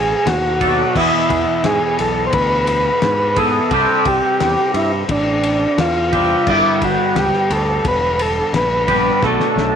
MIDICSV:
0, 0, Header, 1, 5, 480
1, 0, Start_track
1, 0, Tempo, 688863
1, 669, Time_signature, 4, 2, 24, 8
1, 6798, End_track
2, 0, Start_track
2, 0, Title_t, "Transistor combo organ"
2, 0, Program_c, 0, 18
2, 0, Note_on_c, 0, 68, 91
2, 190, Note_on_c, 0, 66, 102
2, 199, Note_off_c, 0, 68, 0
2, 673, Note_on_c, 0, 64, 96
2, 684, Note_off_c, 0, 66, 0
2, 1153, Note_on_c, 0, 68, 94
2, 1165, Note_off_c, 0, 64, 0
2, 1374, Note_off_c, 0, 68, 0
2, 1398, Note_on_c, 0, 69, 97
2, 1571, Note_off_c, 0, 69, 0
2, 1580, Note_on_c, 0, 72, 75
2, 1629, Note_off_c, 0, 72, 0
2, 1629, Note_on_c, 0, 71, 114
2, 1861, Note_off_c, 0, 71, 0
2, 1869, Note_on_c, 0, 71, 113
2, 2354, Note_on_c, 0, 69, 113
2, 2363, Note_off_c, 0, 71, 0
2, 2838, Note_on_c, 0, 67, 97
2, 2846, Note_off_c, 0, 69, 0
2, 3285, Note_off_c, 0, 67, 0
2, 3320, Note_on_c, 0, 64, 91
2, 3426, Note_off_c, 0, 64, 0
2, 3563, Note_on_c, 0, 62, 98
2, 4042, Note_on_c, 0, 65, 91
2, 4050, Note_off_c, 0, 62, 0
2, 4528, Note_on_c, 0, 64, 105
2, 4529, Note_off_c, 0, 65, 0
2, 4765, Note_off_c, 0, 64, 0
2, 4770, Note_on_c, 0, 66, 88
2, 5006, Note_off_c, 0, 66, 0
2, 5007, Note_on_c, 0, 67, 95
2, 5242, Note_on_c, 0, 69, 90
2, 5244, Note_off_c, 0, 67, 0
2, 5481, Note_off_c, 0, 69, 0
2, 5490, Note_on_c, 0, 71, 101
2, 5725, Note_off_c, 0, 71, 0
2, 5726, Note_on_c, 0, 69, 92
2, 5940, Note_off_c, 0, 69, 0
2, 5963, Note_on_c, 0, 71, 97
2, 6439, Note_on_c, 0, 69, 94
2, 6449, Note_off_c, 0, 71, 0
2, 6798, Note_off_c, 0, 69, 0
2, 6798, End_track
3, 0, Start_track
3, 0, Title_t, "Clean electric guitar"
3, 0, Program_c, 1, 27
3, 0, Note_on_c, 1, 47, 92
3, 0, Note_on_c, 1, 54, 94
3, 0, Note_on_c, 1, 57, 97
3, 0, Note_on_c, 1, 62, 105
3, 0, Note_on_c, 1, 69, 108
3, 411, Note_off_c, 1, 47, 0
3, 415, Note_off_c, 1, 54, 0
3, 417, Note_off_c, 1, 57, 0
3, 417, Note_off_c, 1, 69, 0
3, 419, Note_off_c, 1, 62, 0
3, 425, Note_on_c, 1, 69, 86
3, 432, Note_on_c, 1, 62, 70
3, 436, Note_on_c, 1, 57, 76
3, 441, Note_on_c, 1, 54, 74
3, 448, Note_on_c, 1, 47, 74
3, 653, Note_off_c, 1, 69, 0
3, 656, Note_off_c, 1, 62, 0
3, 658, Note_off_c, 1, 57, 0
3, 661, Note_off_c, 1, 54, 0
3, 664, Note_off_c, 1, 47, 0
3, 664, Note_on_c, 1, 40, 88
3, 671, Note_on_c, 1, 47, 97
3, 676, Note_on_c, 1, 52, 97
3, 680, Note_on_c, 1, 59, 104
3, 685, Note_on_c, 1, 64, 102
3, 687, Note_on_c, 1, 68, 100
3, 2332, Note_off_c, 1, 40, 0
3, 2335, Note_off_c, 1, 47, 0
3, 2338, Note_off_c, 1, 52, 0
3, 2338, Note_off_c, 1, 68, 0
3, 2339, Note_off_c, 1, 59, 0
3, 2342, Note_off_c, 1, 64, 0
3, 2347, Note_on_c, 1, 68, 81
3, 2350, Note_on_c, 1, 64, 78
3, 2357, Note_on_c, 1, 59, 79
3, 2360, Note_on_c, 1, 52, 84
3, 2363, Note_on_c, 1, 47, 67
3, 2366, Note_on_c, 1, 40, 67
3, 2573, Note_off_c, 1, 68, 0
3, 2575, Note_off_c, 1, 64, 0
3, 2578, Note_off_c, 1, 59, 0
3, 2580, Note_off_c, 1, 52, 0
3, 2581, Note_off_c, 1, 47, 0
3, 2583, Note_off_c, 1, 40, 0
3, 2584, Note_on_c, 1, 48, 90
3, 2591, Note_on_c, 1, 55, 99
3, 2596, Note_on_c, 1, 60, 98
3, 2601, Note_on_c, 1, 62, 97
3, 2607, Note_on_c, 1, 67, 105
3, 4251, Note_off_c, 1, 48, 0
3, 4255, Note_off_c, 1, 55, 0
3, 4257, Note_off_c, 1, 60, 0
3, 4260, Note_off_c, 1, 67, 0
3, 4268, Note_on_c, 1, 67, 94
3, 4273, Note_off_c, 1, 62, 0
3, 4276, Note_on_c, 1, 62, 84
3, 4281, Note_on_c, 1, 60, 77
3, 4287, Note_on_c, 1, 55, 73
3, 4290, Note_on_c, 1, 48, 76
3, 4493, Note_off_c, 1, 67, 0
3, 4500, Note_off_c, 1, 60, 0
3, 4503, Note_off_c, 1, 55, 0
3, 4505, Note_off_c, 1, 48, 0
3, 4505, Note_on_c, 1, 43, 92
3, 4513, Note_on_c, 1, 50, 84
3, 4516, Note_on_c, 1, 55, 106
3, 4520, Note_on_c, 1, 59, 95
3, 4522, Note_off_c, 1, 62, 0
3, 4525, Note_on_c, 1, 62, 106
3, 4527, Note_on_c, 1, 67, 114
3, 6171, Note_off_c, 1, 43, 0
3, 6175, Note_off_c, 1, 50, 0
3, 6177, Note_off_c, 1, 55, 0
3, 6178, Note_off_c, 1, 67, 0
3, 6181, Note_off_c, 1, 62, 0
3, 6187, Note_on_c, 1, 67, 90
3, 6192, Note_on_c, 1, 62, 77
3, 6195, Note_off_c, 1, 59, 0
3, 6197, Note_on_c, 1, 59, 79
3, 6201, Note_on_c, 1, 55, 79
3, 6205, Note_on_c, 1, 50, 69
3, 6208, Note_on_c, 1, 43, 77
3, 6412, Note_off_c, 1, 67, 0
3, 6415, Note_off_c, 1, 62, 0
3, 6420, Note_off_c, 1, 55, 0
3, 6422, Note_off_c, 1, 50, 0
3, 6423, Note_off_c, 1, 43, 0
3, 6426, Note_on_c, 1, 47, 98
3, 6434, Note_on_c, 1, 54, 104
3, 6436, Note_off_c, 1, 59, 0
3, 6439, Note_on_c, 1, 57, 106
3, 6443, Note_on_c, 1, 62, 107
3, 6447, Note_on_c, 1, 69, 97
3, 6798, Note_off_c, 1, 47, 0
3, 6798, Note_off_c, 1, 54, 0
3, 6798, Note_off_c, 1, 57, 0
3, 6798, Note_off_c, 1, 62, 0
3, 6798, Note_off_c, 1, 69, 0
3, 6798, End_track
4, 0, Start_track
4, 0, Title_t, "Picked electric bass"
4, 0, Program_c, 2, 34
4, 0, Note_on_c, 2, 33, 103
4, 95, Note_off_c, 2, 33, 0
4, 179, Note_on_c, 2, 39, 100
4, 574, Note_off_c, 2, 39, 0
4, 665, Note_on_c, 2, 40, 106
4, 764, Note_off_c, 2, 40, 0
4, 905, Note_on_c, 2, 40, 105
4, 1004, Note_off_c, 2, 40, 0
4, 1145, Note_on_c, 2, 44, 105
4, 1244, Note_off_c, 2, 44, 0
4, 1389, Note_on_c, 2, 35, 87
4, 1584, Note_off_c, 2, 35, 0
4, 1623, Note_on_c, 2, 38, 101
4, 2016, Note_off_c, 2, 38, 0
4, 2108, Note_on_c, 2, 44, 98
4, 2498, Note_off_c, 2, 44, 0
4, 2584, Note_on_c, 2, 36, 105
4, 2683, Note_off_c, 2, 36, 0
4, 2824, Note_on_c, 2, 36, 100
4, 2923, Note_off_c, 2, 36, 0
4, 3071, Note_on_c, 2, 40, 101
4, 3167, Note_off_c, 2, 40, 0
4, 3303, Note_on_c, 2, 43, 101
4, 3500, Note_off_c, 2, 43, 0
4, 3543, Note_on_c, 2, 33, 96
4, 3936, Note_off_c, 2, 33, 0
4, 4026, Note_on_c, 2, 40, 94
4, 4417, Note_off_c, 2, 40, 0
4, 4507, Note_on_c, 2, 31, 95
4, 4605, Note_off_c, 2, 31, 0
4, 4750, Note_on_c, 2, 31, 94
4, 4846, Note_off_c, 2, 31, 0
4, 4985, Note_on_c, 2, 37, 94
4, 5084, Note_off_c, 2, 37, 0
4, 5229, Note_on_c, 2, 38, 99
4, 5423, Note_off_c, 2, 38, 0
4, 5466, Note_on_c, 2, 28, 101
4, 5857, Note_off_c, 2, 28, 0
4, 5944, Note_on_c, 2, 34, 90
4, 6336, Note_off_c, 2, 34, 0
4, 6428, Note_on_c, 2, 35, 101
4, 6525, Note_off_c, 2, 35, 0
4, 6661, Note_on_c, 2, 35, 100
4, 6761, Note_off_c, 2, 35, 0
4, 6798, End_track
5, 0, Start_track
5, 0, Title_t, "Drums"
5, 185, Note_on_c, 9, 51, 115
5, 187, Note_on_c, 9, 38, 107
5, 255, Note_off_c, 9, 51, 0
5, 257, Note_off_c, 9, 38, 0
5, 424, Note_on_c, 9, 51, 86
5, 425, Note_on_c, 9, 36, 90
5, 494, Note_off_c, 9, 51, 0
5, 495, Note_off_c, 9, 36, 0
5, 666, Note_on_c, 9, 36, 116
5, 668, Note_on_c, 9, 49, 111
5, 736, Note_off_c, 9, 36, 0
5, 738, Note_off_c, 9, 49, 0
5, 906, Note_on_c, 9, 36, 83
5, 907, Note_on_c, 9, 51, 83
5, 976, Note_off_c, 9, 36, 0
5, 977, Note_off_c, 9, 51, 0
5, 1142, Note_on_c, 9, 51, 109
5, 1144, Note_on_c, 9, 38, 118
5, 1212, Note_off_c, 9, 51, 0
5, 1213, Note_off_c, 9, 38, 0
5, 1385, Note_on_c, 9, 51, 82
5, 1454, Note_off_c, 9, 51, 0
5, 1621, Note_on_c, 9, 51, 120
5, 1625, Note_on_c, 9, 36, 116
5, 1691, Note_off_c, 9, 51, 0
5, 1695, Note_off_c, 9, 36, 0
5, 1862, Note_on_c, 9, 51, 86
5, 1932, Note_off_c, 9, 51, 0
5, 2103, Note_on_c, 9, 51, 96
5, 2105, Note_on_c, 9, 38, 115
5, 2173, Note_off_c, 9, 51, 0
5, 2174, Note_off_c, 9, 38, 0
5, 2344, Note_on_c, 9, 51, 83
5, 2346, Note_on_c, 9, 36, 99
5, 2414, Note_off_c, 9, 51, 0
5, 2416, Note_off_c, 9, 36, 0
5, 2584, Note_on_c, 9, 51, 104
5, 2587, Note_on_c, 9, 36, 108
5, 2654, Note_off_c, 9, 51, 0
5, 2657, Note_off_c, 9, 36, 0
5, 2824, Note_on_c, 9, 51, 80
5, 2827, Note_on_c, 9, 36, 85
5, 2894, Note_off_c, 9, 51, 0
5, 2897, Note_off_c, 9, 36, 0
5, 3068, Note_on_c, 9, 51, 103
5, 3070, Note_on_c, 9, 38, 111
5, 3138, Note_off_c, 9, 51, 0
5, 3140, Note_off_c, 9, 38, 0
5, 3306, Note_on_c, 9, 51, 73
5, 3375, Note_off_c, 9, 51, 0
5, 3545, Note_on_c, 9, 51, 116
5, 3548, Note_on_c, 9, 36, 123
5, 3615, Note_off_c, 9, 51, 0
5, 3618, Note_off_c, 9, 36, 0
5, 3787, Note_on_c, 9, 51, 88
5, 3857, Note_off_c, 9, 51, 0
5, 4029, Note_on_c, 9, 51, 113
5, 4031, Note_on_c, 9, 38, 119
5, 4099, Note_off_c, 9, 51, 0
5, 4100, Note_off_c, 9, 38, 0
5, 4269, Note_on_c, 9, 36, 93
5, 4269, Note_on_c, 9, 51, 89
5, 4339, Note_off_c, 9, 36, 0
5, 4339, Note_off_c, 9, 51, 0
5, 4506, Note_on_c, 9, 57, 101
5, 4509, Note_on_c, 9, 36, 123
5, 4576, Note_off_c, 9, 57, 0
5, 4579, Note_off_c, 9, 36, 0
5, 4750, Note_on_c, 9, 36, 83
5, 4750, Note_on_c, 9, 51, 87
5, 4819, Note_off_c, 9, 36, 0
5, 4819, Note_off_c, 9, 51, 0
5, 4990, Note_on_c, 9, 51, 113
5, 4991, Note_on_c, 9, 38, 123
5, 5059, Note_off_c, 9, 51, 0
5, 5061, Note_off_c, 9, 38, 0
5, 5112, Note_on_c, 9, 38, 29
5, 5182, Note_off_c, 9, 38, 0
5, 5230, Note_on_c, 9, 51, 87
5, 5300, Note_off_c, 9, 51, 0
5, 5468, Note_on_c, 9, 51, 107
5, 5470, Note_on_c, 9, 36, 125
5, 5538, Note_off_c, 9, 51, 0
5, 5539, Note_off_c, 9, 36, 0
5, 5710, Note_on_c, 9, 51, 90
5, 5779, Note_off_c, 9, 51, 0
5, 5951, Note_on_c, 9, 51, 109
5, 5952, Note_on_c, 9, 38, 111
5, 6020, Note_off_c, 9, 51, 0
5, 6022, Note_off_c, 9, 38, 0
5, 6188, Note_on_c, 9, 51, 86
5, 6189, Note_on_c, 9, 36, 92
5, 6258, Note_off_c, 9, 51, 0
5, 6259, Note_off_c, 9, 36, 0
5, 6428, Note_on_c, 9, 36, 123
5, 6429, Note_on_c, 9, 38, 72
5, 6498, Note_off_c, 9, 36, 0
5, 6499, Note_off_c, 9, 38, 0
5, 6550, Note_on_c, 9, 38, 58
5, 6619, Note_off_c, 9, 38, 0
5, 6672, Note_on_c, 9, 38, 78
5, 6742, Note_off_c, 9, 38, 0
5, 6798, End_track
0, 0, End_of_file